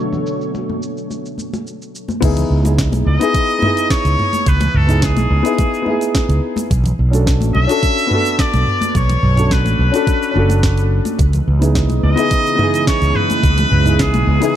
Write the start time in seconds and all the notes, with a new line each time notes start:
Already playing: B2 D3 F#3 A3 C#4 D4 F#4 A4 C#5
0.13 muted conga, low conga, shaker
0.27 shaker
0.41 shaker
0.55 muted conga, shaker
0.69 high conga
0.83 shaker
0.97 shaker
1.11 muted conga, shaker
1.26 shaker
1.38 high conga, shaker
1.53 muted conga, shaker
1.67 shaker
1.82 shaker
1.95 shaker
2.08 muted conga, high conga, shaker
2.21 C#2 B3 D#4 E4 G#4, kick, closed hi-hat, crash, muted conga, shaker
2.37 closed hi-hat, low conga, shaker
2.50 C#2
2.63 B3 D#4 E4 G#4, closed hi-hat, muted conga, shaker
2.78 kick, snare, closed hi-hat, shaker
2.92 B1, closed hi-hat, high conga, shaker
3.06 C#2 D#5
3.19 B3 D#4 E4 G#4, closed hi-hat, muted conga, shaker
3.34 kick, closed hi-hat, shaker
3.50 shaker
3.59 B3 D#4, mid tom, muted conga, high conga
3.64 E4 G#4
3.77 closed hi-hat, shaker
3.90 C#5, kick, snare, closed hi-hat, shaker
4.05 C#2, closed hi-hat, shaker
4.19 mid tom, muted conga
4.33 closed hi-hat, high conga, shaker
4.46 C#2 B4, kick, closed hi-hat, shaker
4.61 closed hi-hat, muted conga, low conga, shaker
4.74 C#2 A4, mid tom
4.87 B3 D#4 E4 G#4, closed hi-hat, mid tom, shaker
5.02 G#4, kick, snare, closed hi-hat, shaker
5.17 B1, closed hi-hat, muted conga, high conga, shaker
5.31 C#2
5.43 B3 D#4 E4 G#4, closed hi-hat, shaker
5.58 kick, closed hi-hat, muted conga, shaker
5.74 shaker
5.82 B3 D#4
5.86 E4 G#4, high conga
6.01 closed hi-hat, shaker
6.15 kick, snare, closed hi-hat, muted conga, shaker
6.29 C#2, closed hi-hat, shaker
6.56 closed hi-hat, muted conga, high conga, shaker
6.71 B1, kick, closed hi-hat, shaker
6.84 closed hi-hat, low conga, shaker
6.99 B1
7.11 C#4 D4 F#4 A4, closed hi-hat, muted conga, shaker
7.27 kick, snare, closed hi-hat, shaker
7.41 A1, closed hi-hat, high conga, shaker
7.55 B1 E5, muted conga
7.67 C#4 D4 F#4 A4, closed hi-hat, shaker
7.83 kick, closed hi-hat, shaker
7.98 shaker
8.07 B3 D4
8.11 F#4 A4, mid tom, muted conga, high conga
8.25 closed hi-hat, shaker
8.39 D5, kick, snare, closed hi-hat, shaker
8.54 B1, closed hi-hat, muted conga, shaker
8.67 mid tom
8.81 closed hi-hat, high conga, shaker
8.95 B1 C#5, kick, closed hi-hat, shaker
9.09 closed hi-hat, muted conga, low conga, shaker
9.23 B1, mid tom
9.36 C#4 D4 F#4 A4, closed hi-hat, mid tom, shaker
9.51 B4, kick, snare, closed hi-hat, muted conga, shaker
9.65 A1, closed hi-hat, high conga, shaker
9.79 B1
9.92 C#4 D4 F#4, closed hi-hat, shaker
9.96 A4
10.07 kick, closed hi-hat, muted conga, shaker
10.22 shaker
10.31 C#4 D4
10.36 F#1 F#4 A4, high conga
10.49 closed hi-hat, muted conga, shaker
10.63 kick, snare, closed hi-hat, shaker
10.77 closed hi-hat, shaker
11.05 closed hi-hat, muted conga, high conga, shaker
11.19 C#2 C#3 E3 G#3 B3 D#5, kick, closed hi-hat, muted conga, shaker
11.33 closed hi-hat, low conga, shaker
11.48 C#2
11.59 B3 D#4 E4 G#4, closed hi-hat, muted conga, shaker
11.75 kick, snare, closed hi-hat, shaker
11.89 B1, closed hi-hat, high conga, shaker
12.03 C#2 D#5
12.16 B3 D#4 E4 G#4, closed hi-hat, muted conga, shaker
12.31 kick, closed hi-hat, shaker
12.46 shaker
12.55 B3 D#4, mid tom, muted conga, high conga
12.60 E4 G#4
12.74 closed hi-hat, shaker
12.87 C#5, kick, snare, closed hi-hat, shaker
13.02 C#2, closed hi-hat, shaker
13.15 B4, mid tom, muted conga
13.30 closed hi-hat, high conga, shaker
13.43 C#2, kick, closed hi-hat, shaker
13.58 closed hi-hat, muted conga, low conga, shaker
13.71 C#2, mid tom
13.84 B3 D#4 E4 G#4, closed hi-hat, mid tom, shaker
13.99 G#4, kick, snare, closed hi-hat, shaker
14.14 B1, closed hi-hat, muted conga, high conga, shaker
14.27 C#2
14.40 B3 D#4 E4 G#4, closed hi-hat, shaker